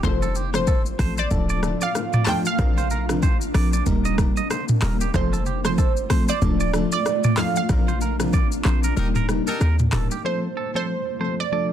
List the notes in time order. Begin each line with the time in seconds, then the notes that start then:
0.03 F1 F3 A3 C4 F4 A4 C5, kick, cross-stick, low conga, shaker
0.22 A4, low bongo, shaker
0.35 G4, low bongo, shaker
0.54 F3 A3 C4 A4 C5, cross-stick, low bongo, shaker
0.67 A4, kick, high bongo, shaker
0.86 shaker
0.99 A1 F3 A3 C4 A4 C5, kick, cross-stick, open hi-hat, shaker
1.18 C5 D5, shaker
1.31 D1 F3 A3 D4 A4, kick, low conga, shaker
1.49 D5, shaker
1.62 F3 A3 D4 A4, cross-stick, low bongo, shaker
1.81 D5 F5, shaker
1.95 cross-stick, high bongo, shaker
2.13 D5, mid tom, shaker
2.24 F3 A3 D4 A4 F5 G5 A5, cross-stick, clap, open hi-hat, high bongo, low conga, shaker
2.45 F5, shaker
2.58 A#1 F3 C4 D4 A#4, kick, cross-stick, low conga, shaker
2.78 C5, low bongo, shaker
2.90 A#4, low bongo, shaker
3.09 F3 C4 D4 A#4, cross-stick, low bongo, shaker
3.22 C5, kick, high bongo, shaker
3.41 shaker
3.54 A#1 F3 C4 D4 A#4 D5, cross-stick, open hi-hat, shaker
3.73 D5, shaker
3.86 D#1 G3 A#3 D#4 A#4, kick, low conga, shaker
4.05 D#5, shaker
4.18 G3 A#3 D#4 A#4, kick, cross-stick, low bongo, shaker
4.37 D#5, shaker
4.50 C5, cross-stick, high bongo, shaker
4.68 mid tom, shaker
4.82 D#1 G3 A#3 D#4 A#4, cross-stick, clap, open hi-hat, high bongo, low conga, shaker
5.01 G4, shaker
5.14 F1 F3 A3 C4 F4 A4 C5, kick, cross-stick, low conga, shaker
5.33 A4, low bongo, shaker
5.45 G4, low bongo, shaker
5.64 F3 A3 C4 A4 C5, cross-stick, low bongo, shaker
5.78 A4, kick, high bongo, shaker
5.97 shaker
6.10 A1 F3 A3 C4 A4 C5, kick, cross-stick, open hi-hat, shaker
6.28 C5 D5, shaker
6.42 D1 F3 A3 D4 A4, kick, low conga, shaker
6.60 D5, shaker
6.73 F3 A3 D4 A4, cross-stick, low bongo, shaker
6.92 D5, shaker
7.06 cross-stick, high bongo, shaker
7.24 D5, mid tom, shaker
7.37 F3 A3 D4 A4 F5, cross-stick, clap, open hi-hat, high bongo, low conga, shaker
7.56 F5, shaker
7.69 A#1 F3 C4 D4 A#4, kick, cross-stick, low conga, shaker
7.88 C5, low bongo, shaker
8.01 A#4, low bongo, shaker
8.19 F3 C4 D4 A#4, cross-stick, low bongo, shaker
8.33 D5, kick, high bongo, shaker
8.52 shaker
8.65 A#1 F3 C4 D4 A#4 C5, cross-stick, clap, shaker
8.84 A#4, shaker
8.97 D#1 G3 A#3 D#4 G4 A#4, low conga, shaker
9.15 A#4, mid tom, shaker
9.29 G3 A#3 D#4 A#4, cross-stick, low bongo, shaker
9.47 D#4 G4 A4 A#4, shaker
9.61 D#2 A#4, cross-stick, high bongo, shaker
9.79 mid tom, shaker
9.93 D#1 G3 A#3 D#4 A4 A#4, cross-stick, clap, mid tom, open hi-hat, high bongo, low conga, shaker
10.11 G4, shaker
10.24 F3 A3 C4 F4 A4 C5
10.57 A4
10.75 F3 A3 C4 A4 C5
11.20 F3 A3 C4 A4 C5
11.40 D5
11.52 F3 A3 D4 A4 D5